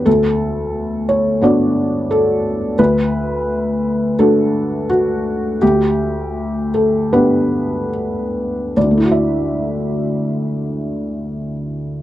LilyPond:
\new Staff \with { instrumentName = "Felt piano" } { \time 4/4 \key d \major \tempo 4 = 82 << { a'4. cis''8 d''4 a'4 | b'2 a'4 fis'4 | g'4. a'8 b'4 r4 | <d, d a e' fis' d'' e''>1 | } \\ { d,2 <b d' fis'>2 | d,2 <a d' fis'>2 | d,2 <b d' g'>2 | r1 | } >> }